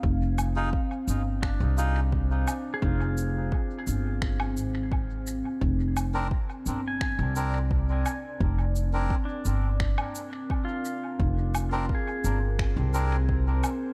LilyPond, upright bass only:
\new Staff \with { instrumentName = "Upright bass" } { \clef bass \time 4/4 \key bes \mixolydian \tempo 4 = 86 f,,4 r8 g,,8. c,4~ c,16 r8 | f,,4 r8 g,,4 aes,,4~ aes,,16 r16 | f,,4 r8 g,,8. c,4~ c,16 r8 | f,,4 r8 g,,8. r4. r16 |
f,,4 r8 g,,8. c,4~ c,16 r8 | }